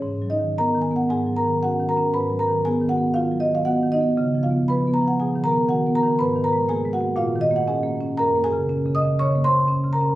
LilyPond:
<<
  \new Staff \with { instrumentName = "Marimba" } { \time 4/4 \key gis \dorian \tempo 4 = 118 cis''8 <dis' dis''>8 <ais' ais''>8 gis''16 fis''16 <gis' gis''>8 <ais' ais''>8 <fis' fis''>8 <ais' ais''>8 | <b' b''>8 <ais' ais''>8 <gis' gis''>8 <fis' fis''>8 <eis' eis''>8 dis''16 eis''16 <fis' fis''>8 <dis' dis''>8~ | <dis' dis''>8 <eis' eis''>8 <b' b''>8 ais''16 fis''16 <gis' gis''>8 <ais' ais''>8 <fis' fis''>8 <ais' ais''>8 | <b' b''>8 <ais' ais''>8 <gis' gis''>8 <fis' fis''>8 <eis' eis''>8 dis''16 fis''16 <gis' gis''>8 r8 |
\key ges \lydian <bes' bes''>8 <aes' aes''>4 <ees'' ees'''>8 <des'' des'''>8 <c'' c'''>4 <bes' bes''>8 | }
  \new Staff \with { instrumentName = "Marimba" } { \clef bass \time 4/4 \key gis \dorian \tuplet 3/2 { gis,8 fis8 dis8 b8 dis8 b8 gis,8 fis8 dis8 cis'8 dis8 cis'8 } | \tuplet 3/2 { gis,8 fis8 dis8 b8 dis8 b8 dis8 fis8 dis8 b8 dis8 b8 } | \tuplet 3/2 { cis8 eis8 b8 eis8 b8 eis8 b,8 dis8 b8 dis8 b8 dis8 } | \tuplet 3/2 { gis,8 dis8 gis8 ais8 gis8 ais8 ais,8 dis8 ais8 cis'8 ais8 cis'8 } |
\key ges \lydian \tuplet 3/2 { ges,8 bes8 des8 des'8 des8 des'8 des8 bes8 des8 des'8 des8 des'8 } | }
>>